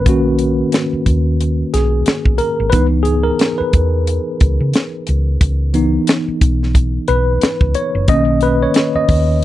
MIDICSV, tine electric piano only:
0, 0, Header, 1, 2, 480
1, 0, Start_track
1, 0, Tempo, 668896
1, 44, Time_signature, 4, 2, 24, 8
1, 6778, End_track
2, 0, Start_track
2, 0, Title_t, "Tine electric piano"
2, 0, Program_c, 0, 4
2, 0, Control_c, 0, 64, 127
2, 0, Note_on_c, 0, 51, 45
2, 0, Note_on_c, 0, 58, 42
2, 0, Note_on_c, 0, 61, 50
2, 0, Note_on_c, 0, 70, 83
2, 0, Note_on_c, 0, 71, 91
2, 48, Note_off_c, 0, 51, 0
2, 48, Note_on_c, 0, 51, 48
2, 50, Note_off_c, 0, 58, 0
2, 50, Note_on_c, 0, 58, 47
2, 56, Note_off_c, 0, 61, 0
2, 56, Note_on_c, 0, 61, 57
2, 64, Note_on_c, 0, 66, 75
2, 505, Note_off_c, 0, 66, 0
2, 737, Note_off_c, 0, 51, 0
2, 738, Note_off_c, 0, 58, 0
2, 741, Note_off_c, 0, 61, 0
2, 1246, Note_on_c, 0, 68, 81
2, 1709, Note_off_c, 0, 70, 0
2, 1709, Note_on_c, 0, 70, 89
2, 1739, Note_off_c, 0, 68, 0
2, 1935, Note_off_c, 0, 71, 0
2, 1935, Note_on_c, 0, 71, 95
2, 1939, Note_off_c, 0, 70, 0
2, 1952, Note_on_c, 0, 52, 52
2, 1957, Note_on_c, 0, 59, 47
2, 1963, Note_on_c, 0, 63, 53
2, 1974, Control_c, 0, 64, 0
2, 2050, Note_off_c, 0, 71, 0
2, 2090, Control_c, 0, 64, 127
2, 2173, Note_on_c, 0, 68, 90
2, 2291, Note_off_c, 0, 52, 0
2, 2294, Note_off_c, 0, 59, 0
2, 2297, Note_off_c, 0, 63, 0
2, 2317, Note_off_c, 0, 68, 0
2, 2322, Note_on_c, 0, 70, 85
2, 2555, Note_off_c, 0, 70, 0
2, 2568, Note_on_c, 0, 71, 72
2, 2679, Note_off_c, 0, 71, 0
2, 4116, Note_on_c, 0, 52, 55
2, 4120, Note_on_c, 0, 59, 50
2, 4126, Note_on_c, 0, 63, 63
2, 4810, Note_off_c, 0, 52, 0
2, 4812, Note_off_c, 0, 59, 0
2, 4815, Note_off_c, 0, 63, 0
2, 5082, Note_on_c, 0, 71, 83
2, 5562, Note_on_c, 0, 73, 92
2, 5576, Note_off_c, 0, 71, 0
2, 5800, Note_on_c, 0, 51, 53
2, 5807, Note_on_c, 0, 58, 48
2, 5807, Note_on_c, 0, 75, 103
2, 5809, Note_off_c, 0, 73, 0
2, 5810, Control_c, 0, 64, 0
2, 5810, Note_on_c, 0, 61, 59
2, 5914, Note_off_c, 0, 75, 0
2, 5920, Control_c, 0, 64, 127
2, 6047, Note_on_c, 0, 71, 91
2, 6188, Note_off_c, 0, 71, 0
2, 6189, Note_on_c, 0, 73, 87
2, 6295, Note_off_c, 0, 73, 0
2, 6428, Note_on_c, 0, 75, 77
2, 6492, Note_off_c, 0, 51, 0
2, 6496, Note_off_c, 0, 58, 0
2, 6497, Note_off_c, 0, 61, 0
2, 6534, Note_off_c, 0, 75, 0
2, 6778, End_track
0, 0, End_of_file